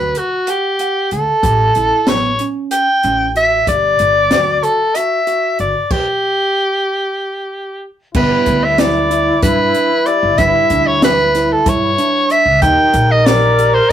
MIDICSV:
0, 0, Header, 1, 7, 480
1, 0, Start_track
1, 0, Tempo, 639659
1, 1074, Time_signature, 7, 3, 24, 8
1, 10448, End_track
2, 0, Start_track
2, 0, Title_t, "Soprano saxophone"
2, 0, Program_c, 0, 64
2, 0, Note_on_c, 0, 71, 85
2, 139, Note_on_c, 0, 66, 69
2, 150, Note_off_c, 0, 71, 0
2, 374, Note_on_c, 0, 67, 76
2, 385, Note_off_c, 0, 66, 0
2, 840, Note_off_c, 0, 67, 0
2, 844, Note_on_c, 0, 69, 84
2, 1563, Note_on_c, 0, 73, 85
2, 1574, Note_off_c, 0, 69, 0
2, 1835, Note_off_c, 0, 73, 0
2, 2038, Note_on_c, 0, 79, 94
2, 2486, Note_off_c, 0, 79, 0
2, 2527, Note_on_c, 0, 76, 87
2, 2744, Note_off_c, 0, 76, 0
2, 2765, Note_on_c, 0, 74, 106
2, 3481, Note_on_c, 0, 69, 79
2, 3492, Note_off_c, 0, 74, 0
2, 3721, Note_on_c, 0, 76, 89
2, 3732, Note_off_c, 0, 69, 0
2, 4198, Note_off_c, 0, 76, 0
2, 4205, Note_on_c, 0, 74, 73
2, 4439, Note_on_c, 0, 67, 80
2, 4451, Note_off_c, 0, 74, 0
2, 5878, Note_off_c, 0, 67, 0
2, 6125, Note_on_c, 0, 71, 82
2, 6483, Note_on_c, 0, 76, 80
2, 6494, Note_off_c, 0, 71, 0
2, 6601, Note_on_c, 0, 74, 93
2, 6613, Note_off_c, 0, 76, 0
2, 7072, Note_off_c, 0, 74, 0
2, 7076, Note_on_c, 0, 71, 86
2, 7552, Note_on_c, 0, 74, 87
2, 7564, Note_off_c, 0, 71, 0
2, 7789, Note_on_c, 0, 76, 102
2, 7800, Note_off_c, 0, 74, 0
2, 8157, Note_on_c, 0, 73, 87
2, 8169, Note_off_c, 0, 76, 0
2, 8277, Note_off_c, 0, 73, 0
2, 8288, Note_on_c, 0, 71, 93
2, 8645, Note_on_c, 0, 69, 76
2, 8656, Note_off_c, 0, 71, 0
2, 8768, Note_on_c, 0, 73, 94
2, 8780, Note_off_c, 0, 69, 0
2, 9240, Note_on_c, 0, 76, 95
2, 9251, Note_off_c, 0, 73, 0
2, 9465, Note_off_c, 0, 76, 0
2, 9469, Note_on_c, 0, 79, 107
2, 9838, Note_on_c, 0, 75, 93
2, 9850, Note_off_c, 0, 79, 0
2, 9948, Note_on_c, 0, 74, 101
2, 9959, Note_off_c, 0, 75, 0
2, 10309, Note_on_c, 0, 72, 89
2, 10321, Note_off_c, 0, 74, 0
2, 10439, Note_off_c, 0, 72, 0
2, 10448, End_track
3, 0, Start_track
3, 0, Title_t, "Flugelhorn"
3, 0, Program_c, 1, 56
3, 6112, Note_on_c, 1, 64, 86
3, 9240, Note_off_c, 1, 64, 0
3, 9477, Note_on_c, 1, 70, 109
3, 10448, Note_off_c, 1, 70, 0
3, 10448, End_track
4, 0, Start_track
4, 0, Title_t, "Tine electric piano"
4, 0, Program_c, 2, 4
4, 0, Note_on_c, 2, 66, 69
4, 239, Note_off_c, 2, 66, 0
4, 360, Note_on_c, 2, 78, 67
4, 537, Note_off_c, 2, 78, 0
4, 605, Note_on_c, 2, 78, 67
4, 958, Note_off_c, 2, 78, 0
4, 1078, Note_on_c, 2, 67, 80
4, 1255, Note_off_c, 2, 67, 0
4, 1325, Note_on_c, 2, 64, 61
4, 1499, Note_off_c, 2, 64, 0
4, 1561, Note_on_c, 2, 59, 66
4, 1737, Note_off_c, 2, 59, 0
4, 1805, Note_on_c, 2, 61, 61
4, 2158, Note_off_c, 2, 61, 0
4, 2283, Note_on_c, 2, 61, 69
4, 2458, Note_off_c, 2, 61, 0
4, 2514, Note_on_c, 2, 66, 60
4, 2693, Note_off_c, 2, 66, 0
4, 2757, Note_on_c, 2, 67, 71
4, 3113, Note_off_c, 2, 67, 0
4, 3237, Note_on_c, 2, 66, 81
4, 3594, Note_off_c, 2, 66, 0
4, 3720, Note_on_c, 2, 66, 78
4, 3896, Note_off_c, 2, 66, 0
4, 3954, Note_on_c, 2, 66, 68
4, 4312, Note_off_c, 2, 66, 0
4, 6122, Note_on_c, 2, 59, 86
4, 6477, Note_off_c, 2, 59, 0
4, 6601, Note_on_c, 2, 64, 73
4, 6777, Note_off_c, 2, 64, 0
4, 6833, Note_on_c, 2, 64, 73
4, 7013, Note_off_c, 2, 64, 0
4, 7081, Note_on_c, 2, 62, 66
4, 7436, Note_off_c, 2, 62, 0
4, 7565, Note_on_c, 2, 67, 72
4, 7740, Note_off_c, 2, 67, 0
4, 7802, Note_on_c, 2, 64, 82
4, 7978, Note_off_c, 2, 64, 0
4, 8043, Note_on_c, 2, 62, 71
4, 8398, Note_off_c, 2, 62, 0
4, 8518, Note_on_c, 2, 64, 64
4, 8695, Note_off_c, 2, 64, 0
4, 8750, Note_on_c, 2, 64, 78
4, 8931, Note_off_c, 2, 64, 0
4, 8992, Note_on_c, 2, 62, 78
4, 9351, Note_off_c, 2, 62, 0
4, 9475, Note_on_c, 2, 63, 83
4, 9832, Note_off_c, 2, 63, 0
4, 9960, Note_on_c, 2, 67, 75
4, 10137, Note_off_c, 2, 67, 0
4, 10202, Note_on_c, 2, 67, 81
4, 10378, Note_off_c, 2, 67, 0
4, 10448, End_track
5, 0, Start_track
5, 0, Title_t, "Grand piano"
5, 0, Program_c, 3, 0
5, 6114, Note_on_c, 3, 55, 59
5, 6117, Note_on_c, 3, 62, 57
5, 6120, Note_on_c, 3, 64, 55
5, 6123, Note_on_c, 3, 71, 67
5, 7765, Note_off_c, 3, 55, 0
5, 7766, Note_off_c, 3, 62, 0
5, 7768, Note_off_c, 3, 64, 0
5, 7769, Note_off_c, 3, 71, 0
5, 7787, Note_on_c, 3, 55, 62
5, 7795, Note_on_c, 3, 64, 56
5, 7796, Note_on_c, 3, 62, 61
5, 7802, Note_on_c, 3, 71, 71
5, 9441, Note_off_c, 3, 55, 0
5, 9445, Note_off_c, 3, 62, 0
5, 9445, Note_off_c, 3, 64, 0
5, 9449, Note_off_c, 3, 71, 0
5, 9470, Note_on_c, 3, 51, 64
5, 9471, Note_on_c, 3, 63, 65
5, 9477, Note_on_c, 3, 67, 61
5, 9481, Note_on_c, 3, 70, 68
5, 10448, Note_off_c, 3, 51, 0
5, 10448, Note_off_c, 3, 63, 0
5, 10448, Note_off_c, 3, 67, 0
5, 10448, Note_off_c, 3, 70, 0
5, 10448, End_track
6, 0, Start_track
6, 0, Title_t, "Upright bass"
6, 0, Program_c, 4, 32
6, 0, Note_on_c, 4, 38, 69
6, 86, Note_off_c, 4, 38, 0
6, 839, Note_on_c, 4, 38, 75
6, 942, Note_off_c, 4, 38, 0
6, 1072, Note_on_c, 4, 33, 75
6, 1283, Note_off_c, 4, 33, 0
6, 1318, Note_on_c, 4, 33, 78
6, 1421, Note_off_c, 4, 33, 0
6, 1558, Note_on_c, 4, 33, 68
6, 1766, Note_off_c, 4, 33, 0
6, 2282, Note_on_c, 4, 33, 80
6, 2699, Note_off_c, 4, 33, 0
6, 2757, Note_on_c, 4, 31, 76
6, 2966, Note_off_c, 4, 31, 0
6, 3000, Note_on_c, 4, 31, 81
6, 3208, Note_off_c, 4, 31, 0
6, 3238, Note_on_c, 4, 38, 72
6, 3446, Note_off_c, 4, 38, 0
6, 4199, Note_on_c, 4, 31, 79
6, 4302, Note_off_c, 4, 31, 0
6, 6113, Note_on_c, 4, 31, 82
6, 6219, Note_off_c, 4, 31, 0
6, 6356, Note_on_c, 4, 38, 81
6, 6986, Note_off_c, 4, 38, 0
6, 7073, Note_on_c, 4, 43, 74
6, 7284, Note_off_c, 4, 43, 0
6, 7675, Note_on_c, 4, 31, 80
6, 7780, Note_off_c, 4, 31, 0
6, 7792, Note_on_c, 4, 31, 85
6, 7899, Note_off_c, 4, 31, 0
6, 8036, Note_on_c, 4, 38, 77
6, 8665, Note_off_c, 4, 38, 0
6, 8752, Note_on_c, 4, 43, 75
6, 8963, Note_off_c, 4, 43, 0
6, 9347, Note_on_c, 4, 37, 80
6, 9455, Note_off_c, 4, 37, 0
6, 9468, Note_on_c, 4, 39, 89
6, 9576, Note_off_c, 4, 39, 0
6, 9707, Note_on_c, 4, 34, 94
6, 10341, Note_off_c, 4, 34, 0
6, 10448, End_track
7, 0, Start_track
7, 0, Title_t, "Drums"
7, 112, Note_on_c, 9, 42, 52
7, 187, Note_off_c, 9, 42, 0
7, 353, Note_on_c, 9, 42, 73
7, 428, Note_off_c, 9, 42, 0
7, 593, Note_on_c, 9, 42, 53
7, 668, Note_off_c, 9, 42, 0
7, 834, Note_on_c, 9, 42, 47
7, 909, Note_off_c, 9, 42, 0
7, 1075, Note_on_c, 9, 36, 92
7, 1075, Note_on_c, 9, 42, 71
7, 1150, Note_off_c, 9, 36, 0
7, 1150, Note_off_c, 9, 42, 0
7, 1312, Note_on_c, 9, 42, 58
7, 1387, Note_off_c, 9, 42, 0
7, 1551, Note_on_c, 9, 38, 97
7, 1551, Note_on_c, 9, 42, 65
7, 1626, Note_off_c, 9, 38, 0
7, 1626, Note_off_c, 9, 42, 0
7, 1792, Note_on_c, 9, 42, 55
7, 1867, Note_off_c, 9, 42, 0
7, 2033, Note_on_c, 9, 42, 81
7, 2108, Note_off_c, 9, 42, 0
7, 2276, Note_on_c, 9, 42, 52
7, 2351, Note_off_c, 9, 42, 0
7, 2519, Note_on_c, 9, 42, 42
7, 2594, Note_off_c, 9, 42, 0
7, 2755, Note_on_c, 9, 36, 76
7, 2755, Note_on_c, 9, 42, 70
7, 2830, Note_off_c, 9, 36, 0
7, 2830, Note_off_c, 9, 42, 0
7, 2993, Note_on_c, 9, 42, 53
7, 3068, Note_off_c, 9, 42, 0
7, 3232, Note_on_c, 9, 38, 97
7, 3232, Note_on_c, 9, 42, 73
7, 3307, Note_off_c, 9, 38, 0
7, 3307, Note_off_c, 9, 42, 0
7, 3477, Note_on_c, 9, 42, 50
7, 3552, Note_off_c, 9, 42, 0
7, 3714, Note_on_c, 9, 42, 78
7, 3790, Note_off_c, 9, 42, 0
7, 3955, Note_on_c, 9, 42, 49
7, 4030, Note_off_c, 9, 42, 0
7, 4192, Note_on_c, 9, 42, 43
7, 4267, Note_off_c, 9, 42, 0
7, 4431, Note_on_c, 9, 49, 71
7, 4432, Note_on_c, 9, 36, 90
7, 4506, Note_off_c, 9, 49, 0
7, 4507, Note_off_c, 9, 36, 0
7, 6112, Note_on_c, 9, 49, 78
7, 6114, Note_on_c, 9, 36, 102
7, 6187, Note_off_c, 9, 49, 0
7, 6189, Note_off_c, 9, 36, 0
7, 6349, Note_on_c, 9, 42, 62
7, 6354, Note_on_c, 9, 36, 66
7, 6424, Note_off_c, 9, 42, 0
7, 6429, Note_off_c, 9, 36, 0
7, 6590, Note_on_c, 9, 38, 91
7, 6590, Note_on_c, 9, 42, 75
7, 6665, Note_off_c, 9, 38, 0
7, 6665, Note_off_c, 9, 42, 0
7, 6835, Note_on_c, 9, 42, 55
7, 6910, Note_off_c, 9, 42, 0
7, 7072, Note_on_c, 9, 42, 86
7, 7074, Note_on_c, 9, 36, 109
7, 7147, Note_off_c, 9, 42, 0
7, 7149, Note_off_c, 9, 36, 0
7, 7312, Note_on_c, 9, 42, 50
7, 7387, Note_off_c, 9, 42, 0
7, 7549, Note_on_c, 9, 42, 46
7, 7624, Note_off_c, 9, 42, 0
7, 7789, Note_on_c, 9, 42, 65
7, 7792, Note_on_c, 9, 36, 97
7, 7864, Note_off_c, 9, 42, 0
7, 7867, Note_off_c, 9, 36, 0
7, 8029, Note_on_c, 9, 42, 58
7, 8032, Note_on_c, 9, 36, 67
7, 8104, Note_off_c, 9, 42, 0
7, 8107, Note_off_c, 9, 36, 0
7, 8272, Note_on_c, 9, 38, 111
7, 8272, Note_on_c, 9, 42, 74
7, 8347, Note_off_c, 9, 38, 0
7, 8347, Note_off_c, 9, 42, 0
7, 8515, Note_on_c, 9, 38, 32
7, 8515, Note_on_c, 9, 42, 55
7, 8590, Note_off_c, 9, 38, 0
7, 8590, Note_off_c, 9, 42, 0
7, 8750, Note_on_c, 9, 42, 87
7, 8751, Note_on_c, 9, 36, 108
7, 8825, Note_off_c, 9, 42, 0
7, 8826, Note_off_c, 9, 36, 0
7, 8992, Note_on_c, 9, 42, 57
7, 9067, Note_off_c, 9, 42, 0
7, 9229, Note_on_c, 9, 42, 52
7, 9304, Note_off_c, 9, 42, 0
7, 9469, Note_on_c, 9, 42, 74
7, 9470, Note_on_c, 9, 36, 94
7, 9544, Note_off_c, 9, 42, 0
7, 9545, Note_off_c, 9, 36, 0
7, 9707, Note_on_c, 9, 42, 62
7, 9710, Note_on_c, 9, 36, 72
7, 9782, Note_off_c, 9, 42, 0
7, 9785, Note_off_c, 9, 36, 0
7, 9953, Note_on_c, 9, 38, 105
7, 9953, Note_on_c, 9, 42, 83
7, 10028, Note_off_c, 9, 38, 0
7, 10028, Note_off_c, 9, 42, 0
7, 10195, Note_on_c, 9, 42, 57
7, 10270, Note_off_c, 9, 42, 0
7, 10448, End_track
0, 0, End_of_file